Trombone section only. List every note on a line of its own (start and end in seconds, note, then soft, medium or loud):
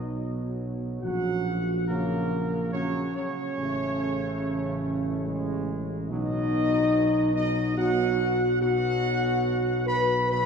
0.00 0.99 B2 medium
0.00 0.99 F#3 medium
1.03 1.70 C#3 medium
1.03 1.70 F#3 medium
1.87 2.68 C#3 medium
1.87 2.68 F#3 medium
2.72 3.53 C#3 medium
2.72 3.12 F#3 medium
3.15 3.54 F#3 medium
3.57 6.06 C#3 medium
3.57 5.25 A3 medium
5.26 6.06 G#3 medium
6.09 7.73 B2 medium
6.09 7.73 F#3 medium
7.77 8.44 B2 medium
7.77 8.44 F#3 medium
8.61 10.26 B2 medium
8.61 10.26 F#3 medium
10.30 10.46 B2 medium
10.30 10.46 F#3 medium